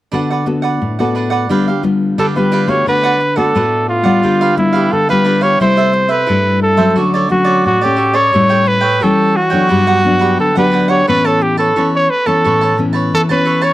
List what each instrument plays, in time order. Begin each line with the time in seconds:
0.12 nylon-string guitar D3 B3 F#4 A4, cavaquinho D4 B4 D5 F#5
0.30 cavaquinho B4 D5 F#5
0.46 nylon-string guitar B3 F#4 A4, muted cavaquinho stroke
0.62 cavaquinho B4 D5 F#5
0.82 nylon-string guitar A2
0.99 nylon-string guitar B3 F#4 A4, cavaquinho B4 D5 F#5
1.15 cavaquinho D4 B4 D5 F#5
1.30 cavaquinho B4 D5 F#5
1.49 nylon-string guitar D3 G3 B3 F4, cavaquinho D4 G4 B4 F5
1.68 cavaquinho G4 B4 F5
1.83 nylon-string guitar G3 B3 F4, muted cavaquinho stroke
2.18 nylon-string guitar D3, cavaquinho D4 G4 B4 F5, trumpet A4
2.36 nylon-string guitar G3 B3 F4, cavaquinho G4 B4 F5, trumpet B4
2.52 cavaquinho D4 G4 B4 F5
2.67 nylon-string guitar A3 B3 F#4, cavaquinho G4 B4 F5, trumpet C#5
2.86 nylon-string guitar D3, cavaquinho D4 B4 D5 F#5, trumpet B4
3.03 cavaquinho B4 D5 F#5
3.21 muted cavaquinho stroke
3.36 nylon-string guitar A3 B3 F#4, trumpet A4, cavaquinho B4 D5 F#5
3.55 nylon-string guitar A2 A3 B3 F#4, cavaquinho D4 B4 D5 F#5
3.89 trumpet F4
4.03 nylon-string guitar G3 B3 F4, cavaquinho B4 D5 F#5
4.22 nylon-string guitar D3, cavaquinho D4 G4 B4 F5
4.41 cavaquinho G4 B4 F5
4.57 nylon-string guitar G3 B3, trumpet E4, muted cavaquinho stroke
4.73 cavaquinho G4 B4 F5
4.92 nylon-string guitar D3, trumpet A4
5.09 nylon-string guitar G3 B3 F4, cavaquinho G4 B4 F5, trumpet B4
5.25 cavaquinho D4 G4 B4 F5
5.41 cavaquinho G4 B4 F5, trumpet C#5
5.60 nylon-string guitar C3 G3 A3 E4, cavaquinho E4 A4 C5 E5, trumpet C5
5.77 cavaquinho A4 C5 E5
5.93 muted cavaquinho stroke
6.08 cavaquinho A4 C5 E5, trumpet B4
6.27 nylon-string guitar G2 G3 A3 E4, cavaquinho E4 A4 E5
6.62 trumpet A4
6.77 nylon-string guitar F#3 A3 C#4, cavaquinho A4 C5 E5
6.96 nylon-string guitar D3, cavaquinho F#4 A4 C#5 D5
7.14 cavaquinho A4 C#5 D5
7.29 nylon-string guitar F#3 A3 C#4, trumpet F#4, muted cavaquinho stroke
7.45 cavaquinho A4 C#5 D5
7.66 nylon-string guitar A2, trumpet F#4
7.81 nylon-string guitar A3 C#4, trumpet G4, cavaquinho A4 C#5 D5
7.96 cavaquinho F#4 A4 C#5 D5
8.13 cavaquinho A4 C#5 D5, trumpet C#5
8.32 nylon-string guitar A2 G3 C#4 E4, cavaquinho G4 A4 C#5 G5
8.49 cavaquinho A4 C#5 G5
8.65 trumpet B4, muted cavaquinho stroke
8.81 cavaquinho A4 C#5 G5
9.00 nylon-string guitar E3 G3 C#4 E4, cavaquinho G4 A4 C#5 G5, trumpet A4
9.36 trumpet F#4
9.50 nylon-string guitar F#3 B3 D4, cavaquinho A4 C#5 G5
9.69 nylon-string guitar G2, cavaquinho D4 G4 B4 F#5
9.87 cavaquinho G4 B4 F#5
10.03 nylon-string guitar F#3 B3 D4, muted cavaquinho stroke
10.19 cavaquinho G4 B4 F#5
10.40 nylon-string guitar D3, trumpet A4
10.55 nylon-string guitar F#3 B3 D4, cavaquinho G4 B4 F#5, trumpet B4
10.72 cavaquinho D4 G4 B4 F#5
10.88 cavaquinho G4 B4 F#5, trumpet C#5
11.07 nylon-string guitar A2 E3 B3 C#4, cavaquinho A4 B4 C#5 A5, trumpet B4
11.24 trumpet A4, cavaquinho B4 C#5 A5
11.41 trumpet G4, muted cavaquinho stroke
11.57 trumpet A4, cavaquinho B4 C#5 A5
11.76 nylon-string guitar E3 B3 C#4, cavaquinho A4 B4 C#5 A5
11.95 trumpet C#5
12.10 trumpet B4
12.26 nylon-string guitar E3 B3 C#4, trumpet A4, cavaquinho B4 C#5 A5
12.44 nylon-string guitar A2, cavaquinho A4 B4 C#5 A5
12.61 cavaquinho B4 C#5 A5
12.77 nylon-string guitar E3 B3 C#4, muted cavaquinho stroke
12.93 cavaquinho B4 C#5 A5
13.14 nylon-string guitar E3, trumpet A4
13.29 nylon-string guitar E3 B3 C#4, cavaquinho B4 C#5 A5, trumpet B4
13.45 cavaquinho A4 B4 C#5 A5
13.61 cavaquinho B4 C#5 A5, trumpet C#5